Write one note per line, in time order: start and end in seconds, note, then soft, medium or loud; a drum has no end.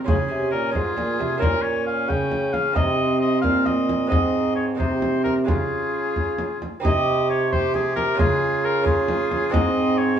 0.04 0.27 C#3 soft
0.04 0.18 C#3 medium
0.04 0.70 C#4 soft
0.04 0.77 C#4 medium
0.04 0.71 F4 soft
0.04 0.51 G#4 medium
0.04 frame drum medium
0.28 0.49 C3 soft
0.28 0.54 C3 medium
0.51 0.72 A#2 soft
0.51 0.74 A#2 medium
0.51 0.72 A#4 medium
0.71 0.94 G#2 soft
0.71 0.96 G#2 medium
0.71 1.38 C#4 soft
0.71 1.39 F4 soft
0.71 1.42 G#4 medium
0.71 frame drum soft
0.76 1.42 F4 medium
0.96 1.18 A#2 medium
0.96 1.17 A#2 medium
0.96 frame drum soft
1.19 1.39 C3 soft
1.19 1.41 C3 medium
1.19 frame drum soft
1.38 2.05 A#2 medium
1.38 2.10 A#2 medium
1.38 2.70 A#3 soft
1.38 2.71 C#4 soft
1.38 2.71 F4 soft
1.38 1.63 A#4 medium
1.42 2.77 C#4 medium
1.42 frame drum medium
1.62 1.86 C#5 medium
1.86 2.11 F5 medium
2.08 2.72 C#3 soft
2.08 2.77 C#3 medium
2.08 2.54 G5 medium
2.08 frame drum soft
2.31 frame drum soft
2.53 2.75 F5 medium
2.53 frame drum soft
2.73 3.39 C3 medium
2.73 3.43 C3 medium
2.73 4.05 C4 soft
2.73 4.10 C4 medium
2.73 4.06 D#4 soft
2.73 3.20 D#5 medium
2.73 frame drum medium
3.20 3.41 D#5 medium
3.41 4.06 A#2 medium
3.41 4.12 A#2 medium
3.41 3.67 F5 medium
3.41 frame drum soft
3.65 4.09 D#5 medium
3.65 frame drum soft
3.89 frame drum soft
4.07 4.78 G#2 medium
4.07 4.74 G#2 medium
4.07 4.74 G#3 soft
4.07 4.75 C4 soft
4.07 4.77 C4 medium
4.07 4.76 D#4 soft
4.07 4.54 D#5 medium
4.12 frame drum medium
4.56 4.66 C#5 medium
4.75 5.43 C3 soft
4.75 5.43 G#3 soft
4.75 5.43 C4 soft
4.75 5.44 D#4 soft
4.75 5.23 C5 medium
4.79 5.48 C3 medium
4.79 5.49 C4 medium
4.79 frame drum soft
5.02 frame drum soft
5.24 5.34 A#4 medium
5.24 frame drum soft
5.45 6.61 C#3 medium
5.45 6.57 C#3 soft
5.45 6.78 G#3 soft
5.45 6.79 C#4 soft
5.45 6.79 F4 soft
5.45 6.64 F4 medium
5.45 6.59 G#4 medium
5.45 frame drum medium
6.16 frame drum soft
6.39 frame drum soft
6.62 frame drum soft
6.80 8.15 C3 medium
6.80 8.13 C4 medium
6.80 8.14 D#4 medium
6.80 8.14 G4 medium
6.80 7.47 G4 medium
6.80 7.26 D#5 loud
6.84 8.15 C3 medium
6.84 frame drum medium
7.29 7.51 C#5 medium
7.51 8.20 G4 medium
7.51 7.74 C5 medium
7.51 frame drum soft
7.74 7.95 G#4 medium
7.74 frame drum medium
7.96 8.18 A#4 medium
7.96 frame drum medium
8.14 9.49 C#3 medium
8.14 9.50 C#3 medium
8.14 8.81 G#3 medium
8.14 8.82 C#4 medium
8.14 8.83 F4 medium
8.14 8.84 F4 medium
8.19 8.66 G#4 medium
8.19 frame drum medium
8.65 8.86 A#4 medium
8.82 9.49 G#3 medium
8.82 9.50 C#4 medium
8.82 9.50 F4 medium
8.82 9.54 F4 medium
8.82 frame drum medium
8.87 9.54 G#4 loud
9.08 frame drum medium
9.31 frame drum soft
9.50 10.20 G#2 medium
9.50 10.15 G#3 medium
9.50 10.16 C4 medium
9.50 10.19 C4 medium
9.50 10.18 D#4 medium
9.50 9.99 D#5 loud
9.54 frame drum medium
9.98 10.19 C#5 loud
10.16 10.20 G#3 medium